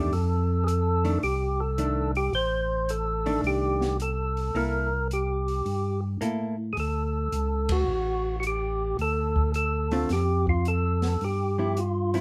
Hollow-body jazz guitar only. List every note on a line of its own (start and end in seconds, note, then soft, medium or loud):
0.00 0.10 A3 medium
0.00 0.10 D4 medium
1.04 1.21 D#3 medium
1.04 1.21 A3 medium
1.04 1.21 D4 medium
1.78 2.11 D#3 medium
1.78 2.12 A3 medium
1.78 2.12 D4 medium
3.26 3.96 D#3 medium
3.26 3.96 A3 medium
3.26 3.96 D4 medium
4.55 4.88 A#3 medium
4.55 4.89 E4 soft
4.55 4.89 A4 medium
6.21 6.55 A#3 medium
6.21 6.55 E4 medium
6.21 6.55 A4 medium
9.92 10.08 D3 medium
9.92 10.08 A3 medium
9.92 10.09 C4 medium
9.92 10.09 F4 medium
11.58 11.75 F3 soft
11.58 11.75 B3 soft
11.58 11.76 E4 medium
12.14 12.21 F3 medium
12.14 12.21 B3 medium
12.14 12.21 E4 medium